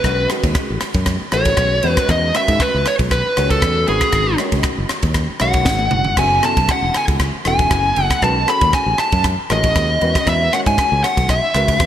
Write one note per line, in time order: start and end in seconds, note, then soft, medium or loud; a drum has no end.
0.00 0.26 B1 medium
0.00 0.27 B4 medium
0.04 0.27 D#3 medium
0.04 0.27 G#3 medium
0.04 0.27 C#4 medium
0.04 0.27 F#4 medium
0.04 0.27 B4 medium
0.04 kick medium
0.04 cross-stick medium
0.04 ride medium
0.29 1.21 D#3 medium
0.29 1.21 G#3 medium
0.29 1.21 C#4 medium
0.29 1.21 F#4 medium
0.29 1.21 G#4 medium
0.29 cross-stick medium
0.29 ride medium
0.43 0.54 D#2 medium
0.43 kick medium
0.43 ride medium
0.55 kick loud
0.55 cross-stick medium
0.55 ride medium
0.70 0.80 A1 medium
0.81 muted fingered electric bass stroke soft
0.81 cross-stick medium
0.81 ride medium
0.94 1.16 F#2 medium
0.94 kick medium
0.94 ride medium
1.06 kick medium
1.06 cross-stick medium
1.06 ride medium
1.21 muted fingered electric bass stroke soft
1.32 1.54 A1 medium
1.32 1.82 D#3 medium
1.32 1.82 C#4 medium
1.32 1.82 F#4 medium
1.32 1.83 G#4 medium
1.32 1.84 A4 medium
1.32 1.92 C#5 medium
1.32 cross-stick medium
1.32 ride medium
1.45 kick medium
1.45 ride medium
1.57 1.79 B1 medium
1.57 kick loud
1.57 cross-stick medium
1.57 ride medium
1.83 1.95 E2 medium
1.83 2.29 D#3 medium
1.83 2.29 G#3 medium
1.83 2.29 C#4 medium
1.83 2.29 F#4 medium
1.83 2.29 B4 medium
1.83 ride medium
1.92 2.11 B4 medium
1.97 kick medium
1.97 cross-stick medium
1.97 ride medium
2.09 2.31 E2 medium
2.09 2.34 D#5 medium
2.09 kick medium
2.09 cross-stick medium
2.09 ride medium
2.34 3.25 D#3 medium
2.34 3.25 G#3 medium
2.34 3.25 C#4 medium
2.34 3.25 F#4 medium
2.34 3.25 B4 medium
2.34 2.62 E5 medium
2.34 cross-stick medium
2.34 ride medium
2.48 2.58 G#2 medium
2.48 kick medium
2.48 ride medium
2.60 2.87 B4 medium
2.60 kick loud
2.60 cross-stick medium
2.60 ride medium
2.74 2.84 C#2 medium
2.85 2.94 C#5 medium
2.85 cross-stick medium
2.85 ride medium
2.99 3.21 B1 medium
2.99 kick medium
2.99 ride medium
3.11 3.50 B4 medium
3.11 kick medium
3.11 cross-stick medium
3.11 ride medium
3.36 3.59 C#2 medium
3.36 3.86 D#3 medium
3.36 3.88 F#3 medium
3.36 3.86 C#4 medium
3.36 3.86 F#4 medium
3.36 3.88 C#5 medium
3.36 cross-stick medium
3.36 ride medium
3.50 3.85 A4 medium
3.50 kick medium
3.50 ride medium
3.62 3.84 E2 medium
3.62 kick loud
3.62 cross-stick medium
3.62 ride medium
3.87 4.00 G#1 medium
3.87 4.33 D#3 medium
3.87 4.33 G#3 medium
3.87 4.33 C#4 medium
3.87 4.33 F#4 medium
3.87 4.36 G#4 medium
3.87 4.34 B4 medium
3.87 ride medium
4.01 kick medium
4.01 cross-stick medium
4.01 ride medium
4.12 4.35 G#1 medium
4.12 kick medium
4.12 cross-stick medium
4.12 ride medium
4.38 5.30 D#3 medium
4.38 5.30 G#3 medium
4.38 5.30 C#4 medium
4.38 5.30 F#4 medium
4.38 5.30 C#5 medium
4.38 cross-stick medium
4.38 ride medium
4.52 4.63 C#2 medium
4.52 kick medium
4.52 ride medium
4.63 kick loud
4.63 cross-stick medium
4.63 ride medium
4.78 4.88 F#1 medium
4.89 muted fingered electric bass stroke soft
4.89 cross-stick medium
4.89 ride medium
5.02 5.25 D#2 medium
5.02 kick medium
5.02 ride medium
5.14 kick medium
5.14 cross-stick medium
5.14 ride medium
5.30 muted fingered electric bass stroke soft
5.40 5.64 B1 medium
5.40 6.09 D#3 medium
5.40 6.09 G#3 medium
5.40 6.09 C#4 medium
5.40 6.09 F#4 medium
5.40 6.09 C#5 medium
5.40 6.14 F#5 medium
5.40 cross-stick medium
5.40 ride medium
5.53 kick medium
5.53 ride medium
5.65 5.89 G#1 medium
5.65 kick loud
5.65 snare medium
5.79 high tom medium
5.91 6.16 F#1 medium
5.91 mid tom medium
6.05 floor tom medium
6.17 6.39 F#1 medium
6.17 6.40 C#3 medium
6.17 6.41 F#3 medium
6.17 6.41 B3 medium
6.17 6.41 E4 medium
6.17 6.41 A4 medium
6.17 6.45 G#5 medium
6.17 kick medium
6.17 cross-stick medium
6.17 ride medium
6.17 crash medium
6.43 7.34 C#3 medium
6.43 7.34 F#3 medium
6.43 7.34 B3 medium
6.43 7.34 E4 medium
6.43 7.34 A4 medium
6.43 6.71 A5 medium
6.43 cross-stick medium
6.43 ride medium
6.57 6.67 B1 medium
6.57 kick medium
6.57 ride medium
6.69 6.94 F#5 medium
6.69 kick loud
6.69 cross-stick medium
6.69 ride medium
6.82 6.93 E1 medium
6.94 7.04 G#5 medium
6.94 cross-stick medium
6.94 ride medium
7.08 7.30 C#2 medium
7.08 kick medium
7.08 ride medium
7.20 kick medium
7.20 cross-stick medium
7.20 ride medium
7.45 7.67 E1 medium
7.45 8.14 C#3 medium
7.45 8.14 F#3 medium
7.45 8.14 B3 medium
7.45 8.14 E4 medium
7.45 8.14 A4 medium
7.45 8.05 G#5 medium
7.45 cross-stick medium
7.45 ride medium
7.59 kick medium
7.59 ride medium
7.71 7.93 F#1 medium
7.71 kick loud
7.71 cross-stick medium
7.71 ride medium
7.96 8.09 F#1 medium
7.96 ride medium
8.05 8.23 F#5 medium
8.10 kick medium
8.10 cross-stick medium
8.10 ride medium
8.22 8.44 B1 medium
8.22 8.45 D#3 medium
8.22 8.45 G#3 medium
8.22 8.45 C#4 medium
8.22 8.45 F#4 medium
8.22 8.45 B4 medium
8.22 8.49 A5 medium
8.22 kick medium
8.22 cross-stick medium
8.22 ride medium
8.48 9.39 D#3 medium
8.48 9.39 C#4 medium
8.48 9.39 F#4 medium
8.48 9.39 G#4 medium
8.48 9.39 A4 medium
8.48 8.73 B5 medium
8.48 cross-stick medium
8.48 ride medium
8.61 8.72 D#2 medium
8.61 kick medium
8.61 ride medium
8.73 8.99 G#5 medium
8.73 kick loud
8.73 cross-stick medium
8.73 ride medium
8.86 8.97 A1 medium
8.98 9.23 A5 medium
8.98 muted fingered electric bass stroke soft
8.98 cross-stick medium
8.98 ride medium
9.12 9.34 F#2 medium
9.12 kick medium
9.12 ride medium
9.24 kick medium
9.24 cross-stick medium
9.24 ride medium
9.38 muted fingered electric bass stroke soft
9.50 9.72 A1 medium
9.50 9.99 D#3 medium
9.50 9.99 G#3 medium
9.50 9.99 C#4 medium
9.50 9.99 F#4 medium
9.50 10.02 G#4 medium
9.50 10.29 D#5 medium
9.50 cross-stick medium
9.50 ride medium
9.63 kick medium
9.63 ride medium
9.75 9.97 D#2 medium
9.75 kick loud
9.75 cross-stick medium
9.75 ride medium
10.01 10.13 E2 medium
10.01 10.46 D#3 medium
10.01 10.46 G#3 medium
10.01 10.46 C#4 medium
10.01 10.46 F#4 medium
10.01 10.47 B4 medium
10.01 ride medium
10.15 kick medium
10.15 cross-stick medium
10.15 ride medium
10.26 10.48 E2 medium
10.26 10.54 E5 loud
10.26 kick medium
10.26 cross-stick medium
10.26 ride medium
10.52 11.43 D#3 medium
10.52 11.43 G#3 medium
10.52 11.43 C#4 medium
10.52 11.43 F#4 medium
10.52 11.43 C#5 medium
10.52 10.58 F#5 medium
10.52 cross-stick medium
10.52 ride medium
10.66 10.76 G#2 medium
10.66 11.03 G#5 loud
10.66 kick medium
10.66 ride medium
10.78 kick loud
10.78 cross-stick medium
10.78 ride medium
10.92 11.02 C#2 medium
11.04 11.27 F#5 loud
11.04 muted fingered electric bass stroke soft
11.04 cross-stick medium
11.04 ride medium
11.17 11.39 B1 medium
11.17 kick medium
11.17 ride medium
11.29 11.86 E5 medium
11.29 kick medium
11.29 cross-stick medium
11.29 ride medium
11.54 11.76 C#2 medium
11.54 11.86 D#3 medium
11.54 11.86 G#3 medium
11.54 11.86 C#4 medium
11.54 11.86 F#4 medium
11.54 11.86 B4 medium
11.54 cross-stick medium
11.54 ride medium
11.68 kick medium
11.68 ride medium
11.80 11.86 E2 medium
11.80 kick loud
11.80 cross-stick medium
11.80 ride medium